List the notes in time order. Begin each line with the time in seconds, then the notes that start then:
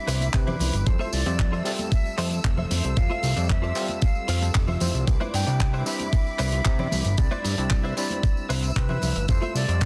Already playing: G3 C4 D4 E4 E5 B5 D6
0.07 C2 E4 B4 C5 E5, open hi-hat, tambourine
0.21 closed hi-hat, tambourine, high conga
0.33 C3 B4, kick, clap, closed hi-hat, tambourine
0.47 E4 B4 C5 D5, tambourine, low conga
0.59 C2, open hi-hat, tambourine, high conga, low conga
0.73 G1, closed hi-hat, tambourine
0.86 F2 G3 C4 E4 F4 A4 C5 E6, kick, closed hi-hat, tambourine
0.99 F4 A4 C5 E5, tambourine, high conga
1.13 C2 D5, open hi-hat, tambourine
1.26 F2 G3 C4 F4 D5 E5, closed hi-hat, tambourine
1.38 muted clean electric guitar stroke, kick, clap, closed hi-hat, tambourine, high conga
1.52 F4 A4 C5 E5, tambourine
1.65 G3 C4 F4 A4 D5 E5, open hi-hat, tambourine
1.78 closed hi-hat, tambourine, high conga
1.92 E5, kick, closed hi-hat, tambourine
2.06 tambourine
2.17 F2 F4 A4 C5 E5, clap, open hi-hat, tambourine
2.31 closed hi-hat, tambourine, high conga
2.44 F1, kick, clap, closed hi-hat
2.57 F4 A4 C5 E5, tambourine, low conga
2.71 F2 C5, open hi-hat, tambourine, high conga, low conga
2.84 C2, closed hi-hat, tambourine
2.97 F2 G3 C4 F4 A4 F5, kick, closed hi-hat, tambourine
3.10 F4 A4 C5 E5, tambourine, high conga
3.23 C2, open hi-hat, tambourine
3.36 F2 G3 C4 F4 D5 E5, closed hi-hat, tambourine
3.49 E5, muted clean electric guitar stroke, kick, clap, closed hi-hat, high conga
3.62 F4 A4 C5 D5, tambourine
3.75 G3 C4 F4 A4 F5, clap, open hi-hat, tambourine
3.88 closed hi-hat, tambourine, high conga
4.02 F5, kick, closed hi-hat, tambourine
4.15 tambourine
4.28 F2 F4 A4 C5 F5, open hi-hat, tambourine
4.41 G3 C4 F4 A4, closed hi-hat, tambourine, high conga
4.55 F1, kick, clap, closed hi-hat
4.67 F4 A4 C5 E5, tambourine, low conga
4.80 F2 G3 C4 E4 F4 C5, open hi-hat, tambourine, high conga, low conga
4.94 C2, closed hi-hat, tambourine
5.07 C2 G3 C4 D4 E4 B5 D6, kick, closed hi-hat, tambourine
5.20 E4 B4 C5 D5, tambourine, high conga
5.34 G2 G5, open hi-hat, tambourine
5.46 C2 G3 C4 D4 E4 D5, closed hi-hat, tambourine
5.60 muted clean electric guitar stroke, kick, clap, closed hi-hat, tambourine, high conga
5.73 E4 B4 C5 E5, tambourine
5.85 G3 C4 D4 E4 E5 B5, open hi-hat, tambourine
5.99 closed hi-hat, tambourine, high conga
6.13 kick, closed hi-hat, tambourine
6.27 tambourine
6.39 C2 E4 B4 C5 D5, clap, open hi-hat, tambourine
6.52 closed hi-hat, tambourine, high conga
6.65 C3, kick, clap, closed hi-hat, tambourine
6.79 E4 B4 C5 D5, tambourine, low conga
6.91 C2, open hi-hat, tambourine, high conga, low conga
7.05 G1, closed hi-hat, tambourine
7.17 C2 G3 C4 D4 E4 D5 B5 E6, kick, closed hi-hat, tambourine
7.31 E4 B4 C5 D5, tambourine, high conga
7.45 G2, open hi-hat, tambourine
7.57 C2 G3 C4 D4 E4 D5, closed hi-hat, tambourine
7.70 muted clean electric guitar stroke, kick, clap, closed hi-hat, tambourine, high conga
7.83 E4 B4 C5 E5, tambourine
7.96 G3 C4 D4 E4 D5 B5, open hi-hat, tambourine
8.10 closed hi-hat, tambourine, high conga
8.23 kick, closed hi-hat, tambourine
8.37 tambourine
8.49 C2 E4 B4 C5 E5, open hi-hat, tambourine
8.63 closed hi-hat, tambourine, high conga
8.76 C3 B4, kick, clap, closed hi-hat
8.89 E4 B4 C5 E5, tambourine, low conga
9.02 C2, open hi-hat, tambourine, high conga, low conga
9.15 G1, closed hi-hat, tambourine
9.28 F2 G3 C4 E4 F4 A4 C5, kick, closed hi-hat, tambourine
9.41 F4 A4 C5 E5, tambourine, high conga
9.55 C2 D5, open hi-hat, tambourine
9.68 F2 G3 C4 F4 D5 E5, closed hi-hat, tambourine
9.81 kick, clap, closed hi-hat, tambourine, high conga